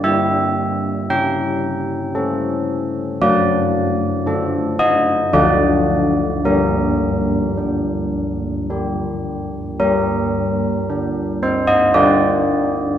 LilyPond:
\new Staff \with { instrumentName = "Church bells" } { \time 3/4 \key g \minor \tempo 4 = 56 << { e''4 g''4. r8 | d''4. ees''8 d''4 | bes'2~ bes'8 r8 | bes'4. c''16 ees''16 d''4 | } \\ { g4 cis'4 <cis' a'>4 | fis4 <d' a'>4 <d d' fis'>4 | g4 d'4 <d' g'>4 | g4 d'4 <d' g'>4 | } >> }